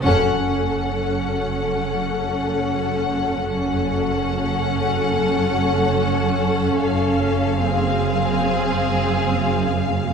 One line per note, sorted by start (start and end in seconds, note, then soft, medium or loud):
0.03 3.38 F#1 medium
0.03 3.38 F#2 medium
0.03 3.38 C#4 medium
0.03 3.38 A4 medium
0.03 3.38 F#5 medium
3.41 6.77 F#1 soft
3.41 6.76 F#2 soft
3.41 7.60 C#4 soft
3.41 7.61 A4 soft
3.41 6.77 F#5 soft
6.81 10.13 F#1 medium
6.81 10.13 F#2 medium
6.81 10.13 F5 soft
7.64 10.13 C4 soft
7.64 10.13 G#4 medium